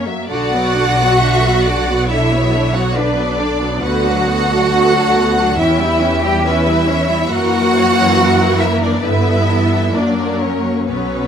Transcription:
0.06 viola section F#3 A#3, violin section E5
0.29 double bass section B1, viola section D3 D4, cello section F#4, violin section D5 F#5
0.53 viola section F#3 B3
0.75 viola section D3 D4
0.98 viola section F#3 B3
1.20 viola section D3 D4, violin section E5
1.43 viola section F#3 B3
1.63 viola section D3 D4, violin section D5
1.88 viola section F#3 B3
2.08 viola section D3 D4, cello section E4, violin section C#5 E5
2.32 viola section F#3 B3
2.54 viola section D3 D4
2.74 viola section F#3 B3, cello section F#4, violin section F#5
2.94 viola section D3 D4, cello section D4, violin section B4 D5
3.17 viola section F#3 B3
3.39 viola section D3 D4, violin section D5
3.61 viola section F#3 B3
3.82 double bass section D2, viola section D3 B3, cello section F#4, violin section B4 F#5
4.05 viola section F#3 D4
4.26 viola section D3 B3, violin section A4
4.48 viola section F#3 D4
4.70 viola section D3 B3
4.92 viola section F#3 D4
5.15 viola section D3 B3
5.37 viola section F#3 D4
5.58 double bass section E2, viola section E3 C#4, cello section E4, violin section G4 E5
5.80 viola section G3 E4
6.01 viola section E3 C#4
6.23 viola section G3 E4, cello section G4, violin section G5
6.43 viola section E3 C#4, cello section E4, violin section B4 E5
6.65 viola section G3 E4
6.86 viola section E3 C#4, violin section C#5
7.08 viola section G3 E4
7.29 double bass section F#2, viola section E3 A#3, cello section F#4, violin section A#4 F#5
7.74 violin section C#5
8.16 violin section A#4
8.59 cello section E4, violin section E5
8.81 cello section D4, violin section D5
9.03 double bass section G2, viola section D3 B3, cello section E4, violin section B4 E5
9.48 viola section E3, violin section A4
9.93 double bass section F#2, viola section F#3 A#3, cello section D4, violin section A#4 D5
10.41 cello section C#4, violin section C#5
10.87 double bass section B1, viola section F#3 B3, cello section C#4, violin section B4 C#5

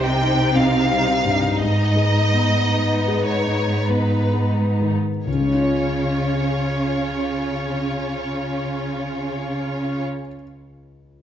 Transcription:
Already playing: grand piano C2 G3 C4 D#4 G4, cello section C3, violin section C4 D#4
0.05 violin section G5
0.22 grand piano D#4
0.56 grand piano C4, violin section F5
0.90 grand piano G3
1.25 grand piano G2
1.60 grand piano G#2, cello section G#2, violin section B3 D#5
1.96 grand piano G#3
2.32 grand piano B3
2.69 grand piano D#4
3.08 grand piano G#4
3.27 violin section C#5
3.47 grand piano D#4
3.88 grand piano B3, violin section B4
4.34 grand piano G#3
4.81 grand piano D#3
5.26 grand piano C#2, cello section C#3, violin section C#4 F4 C#5
5.33 grand piano C#3
5.40 grand piano G#3
5.47 grand piano C#4
5.54 grand piano F4
5.61 grand piano C#5

